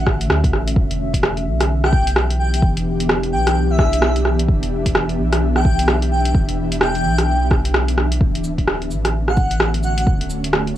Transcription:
Already playing: A1 D3 A3 C#4 F#4 E5
0.07 kick, cross-stick
0.21 closed hi-hat
0.30 D2, cross-stick
0.44 kick, closed hi-hat
0.53 A1, cross-stick
0.68 closed hi-hat
0.76 E1 E3, kick
0.91 closed hi-hat
1.01 B3
1.14 kick, closed hi-hat
1.23 cross-stick
1.37 closed hi-hat
1.46 B1 G4
1.61 cross-stick, closed hi-hat
1.68 D4
1.84 G5, cross-stick
1.93 kick
2.07 closed hi-hat
2.16 cross-stick
2.30 closed hi-hat
2.39 G5
2.54 G5, closed hi-hat
2.62 E1, kick
2.77 closed hi-hat
2.83 E5
3.00 closed hi-hat
3.09 cross-stick
3.23 closed hi-hat
3.32 B1 G5
3.47 cross-stick, closed hi-hat
3.70 E5
3.79 kick, cross-stick
3.93 closed hi-hat
4.02 cross-stick
4.16 closed hi-hat
4.25 cross-stick
4.39 closed hi-hat
4.48 E1, kick
4.63 closed hi-hat
4.86 kick, closed hi-hat
4.95 cross-stick
5.09 closed hi-hat
5.18 B1
5.32 cross-stick, closed hi-hat
5.56 G5, cross-stick
5.65 kick
5.79 closed hi-hat
5.88 cross-stick
6.02 closed hi-hat
6.12 G5
6.25 G5, closed hi-hat
6.35 E1, kick
6.49 closed hi-hat
6.72 closed hi-hat
6.81 G5, cross-stick
6.95 closed hi-hat
7.05 B1
7.18 cross-stick, closed hi-hat
7.51 kick, cross-stick
7.65 closed hi-hat
7.74 cross-stick
7.88 closed hi-hat
7.98 cross-stick
8.12 closed hi-hat
8.21 D1 D3, kick
8.35 closed hi-hat
8.42 A3, cabasa
8.58 C#4, kick, closed hi-hat
8.68 cross-stick
8.82 closed hi-hat
8.91 A1, cabasa
9.05 cross-stick, closed hi-hat
9.28 F#4 F#5, cross-stick
9.37 kick, cabasa
9.51 closed hi-hat
9.60 cross-stick
9.74 closed hi-hat
9.83 F#5, cabasa
9.92 E5
9.98 F#5, closed hi-hat
10.07 D1, kick
10.21 closed hi-hat
10.30 cabasa
10.44 closed hi-hat
10.53 cross-stick
10.67 closed hi-hat

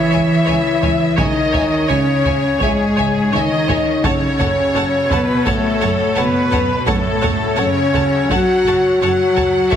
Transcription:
Already playing: E3 C#4 E4 G#4 C#5 E5
0.11 C#2 C#5 E5 G#5
0.45 C#2 C#5 E5 G#5
0.81 C#2 C#5 E5 G#5, taiko low
1.17 C#2 D#3 C#4 D#4 G#4 C#5 D#5 E5 G#5, taiko
1.52 C#2 C#5 E5 G#5, taiko low
1.88 C#2 C#3 C#4 C#5 E5 G#5
2.24 C#2 C#5 E5 G#5, taiko low
2.59 C#2 G#2 G#3 G#4 C#5 E5 G#5, taiko
2.96 C#2 C#5 E5 G#5
3.32 C#2 D#3 D#4 C#5 D#5 E5 G#5
3.68 C#2 C#5 E5 G#5, taiko low
4.04 F#1 C#3 C#4 F#4 A4 C#5 F#5 A5, taiko
4.39 F#1 A4 C#5 F#5 A5, taiko low
4.74 F#1 A4 C#5 F#5 A5
5.10 F#1 B2 B3 A4 B4 C#5 F#5 A5, taiko low
5.46 F#1 A2 A3 A4 C#5 F#5 A5, taiko
5.81 F#1 A4 C#5 F#5 A5
6.16 F#1 B2 B3 A4 B4 C#5 F#5 A5
6.51 F#1 A4 C#5 F#5 A5, taiko low
6.87 F#1 A2 A3 C#4 F#4 A4 C#5 F#5 A5, taiko
7.22 F#1 A4 C#5 F#5 A5, taiko low
7.56 F#1 C#3 C#4 A4 C#5 F#5 A5
7.93 F#1 A4 C#5 F#5 A5, taiko low
8.30 F#1 F#3 F#4 A4 C#5 F#5 A5, taiko
8.65 F#1 A4 C#5 F#5 A5
9.01 F#1 F#3 F#4 A4 C#5 F#5 A5
9.36 F#1 A4 C#5 F#5 A5, taiko low
9.71 A1 E3 C#4 E4 A4 C#5 E5 A5, taiko

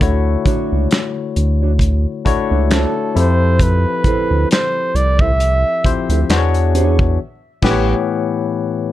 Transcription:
0.01 D2 D3 A3 E4 F#4 C#5, kick, closed hi-hat
0.46 D4 F#4 C#5, kick, closed hi-hat
0.72 C#2
0.91 snare, clap, closed hi-hat
1.36 D2, closed hi-hat
1.62 D4 F#4 C#5
1.79 kick, closed hi-hat
2.25 C#2 A3 D4 E4 F#4 C#5, kick, closed hi-hat
2.50 C#2 D4 F#4 C#5
2.70 D4 F#4 A4 C#5, snare, clap, closed hi-hat
3.15 F2 F3 C4 E4 G4 A4 C5, closed hi-hat
3.60 B4, kick, closed hi-hat
4.04 E4 A4 C5, kick, closed hi-hat
4.31 D2
4.51 C5, snare, clap, closed hi-hat
4.95 C2 D5, closed hi-hat
5.19 E4 A4 C5 E5, kick
5.40 closed hi-hat
5.84 D2 F3 C4 E4 G4 C5, kick, closed hi-hat
6.09 D2 E4 A4 C5, closed hi-hat
6.30 E2 E3 B3 D4 F#4 G#4 C5, muted clean electric guitar stroke, snare, clap, closed hi-hat
6.38 C#5
6.54 closed hi-hat
6.75 D4 G#4 C#5, closed hi-hat
6.99 kick
7.62 A1 A2 E3 B3 G4 B4 C#5, kick, snare, crash
7.71 C#5

